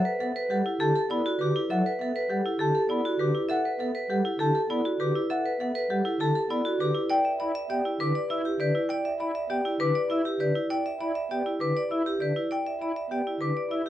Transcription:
Already playing: F#5
0.05 B4
0.20 B3 A4 E5 F#5
0.36 B4
0.50 G3 G4 A4 F#5
0.66 E4
0.80 D3 G4 A4 A5
0.96 A4
1.10 B3 E4 D5 B5
1.26 F#4
1.39 D3 G4 B4 D6
1.56 E4
1.70 F#3 A4 E5 F#5
1.86 B4
1.99 B3 A4 E5 F#5
2.15 B4
2.29 G3 G4 A4 F#5
2.45 E4
2.59 D3 G4 A4 A5
2.75 A4
2.89 B3 E4 D5 B5
3.05 F#4
3.19 D3 G4 B4 D6
3.35 E4
3.49 A4 E5 F#5
3.65 B4
3.79 B3 A4 E5 F#5
3.95 B4
4.10 G3 G4 A4 F#5
4.25 E4
4.39 D3 G4 A4 A5
4.55 A4
4.70 B3 E4 D5 B5
4.85 F#4
5.00 D3 G4 B4 D6
5.15 E4
5.30 A4 E5 F#5
5.46 B4
5.60 B3 A4 E5 F#5
5.75 B4
5.90 G3 G4 A4 F#5
6.05 E4
6.20 D3 G4 A4 A5
6.35 A4
6.50 B3 E4 D5 B5
6.65 F#4
6.80 D3 G4 B4 D6
6.95 E4
7.10 D5 G5
7.25 E5
7.40 E4 D5 E5 B5
7.55 E5
7.70 B3 G4 D5 G5
7.85 E4
8.00 D3 B4 D6
8.15 D5
8.30 E4 E5 E6
8.45 G4
8.60 D3 B4 D5 G6
8.75 E4
8.89 D5 G5
9.05 E5
9.20 E4 D5 E5 B5
9.35 E5
9.50 B3 G4 D5 G5
9.66 E4
9.80 D3 B4 D6
9.95 D5
10.10 E4 E5 E6
10.25 G4
10.40 D3 B4 D5 G6
10.55 E4
10.70 D5 G5
10.86 E5
11.00 E4 D5 E5 B5
11.15 E5
11.31 B3 G4 D5 G5
11.46 E4
11.60 D3 B4 D6
11.76 D5
11.91 E4 E5 E6
12.06 G4
12.20 D3 B4 D5 G6
12.36 E4
12.51 D5 G5
12.66 E5
12.81 E4 D5 E5 B5
12.96 E5
13.10 B3 G4 D5 G5
13.27 E4
13.40 D3 B4 D6
13.57 D5
13.70 E4 E5 E6
13.86 G4

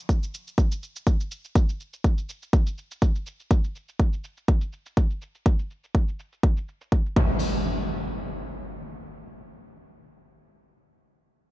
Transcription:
0.09 kick, cabasa
0.23 cabasa
0.34 cabasa
0.48 cabasa
0.58 kick, cabasa
0.72 cabasa
0.83 cabasa
0.96 cabasa
1.07 kick, cabasa
1.20 cabasa
1.31 cabasa
1.45 cabasa
1.55 kick, cabasa
1.69 cabasa
1.80 cabasa
1.93 cabasa
2.04 kick, cabasa
2.18 cabasa
2.29 cabasa
2.42 cabasa
2.53 kick, cabasa
2.67 cabasa
2.78 cabasa
2.91 cabasa
3.02 kick, cabasa
3.15 cabasa
3.26 cabasa
3.40 cabasa
3.51 kick, cabasa
3.64 cabasa
3.75 cabasa
3.88 cabasa
4.00 kick, cabasa
4.13 cabasa
4.24 cabasa
4.37 cabasa
4.48 kick, cabasa
4.61 cabasa
4.73 cabasa
4.86 cabasa
4.97 kick, cabasa
5.10 cabasa
5.22 cabasa
5.35 cabasa
5.46 kick, cabasa
5.59 cabasa
5.71 cabasa
5.84 cabasa
5.95 kick, cabasa
6.08 cabasa
6.19 cabasa
6.33 cabasa
6.43 kick, cabasa
6.57 cabasa
6.68 cabasa
6.81 cabasa
6.92 kick, cabasa
7.06 cabasa
7.16 kick, crash, impact

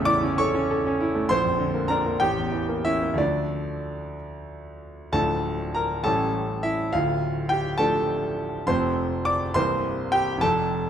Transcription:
Already playing: A1 E2 C#3 A3 E5 E6
0.05 E4 D5 D6
0.23 C#4
0.38 A4 C#5 C#6
0.54 C#4
0.71 A4
0.86 C#4
1.00 E4
1.15 A3
1.29 A#1 C5 C6
1.45 F2
1.58 D3
1.74 A#3
1.88 D4 A#4 A#5
2.06 A#3
2.20 A1 G4 G5
2.37 E2
2.52 E3
2.69 A#3
2.85 C#4 E4 E5
3.02 A#3
3.14 D2 F3 A3
3.18 D4 D5
5.12 D1 D2 F3 A3 D4 A4 A5
5.75 A#4 A#5
6.04 A1 A2 G3 A3 C#4 A4 A5
6.63 E4 E5
6.93 D1 D2 F4 F5
7.49 G4 G5
7.78 F3 A3 D4 A4 A5
8.67 F1 F2 F3 A3 C4 C5 C6
9.25 D5 D6
9.54 C1 C2 E3 A#3 C4 C5 C6
10.12 G4 G5
10.38 F1 A5
10.42 F2 A4

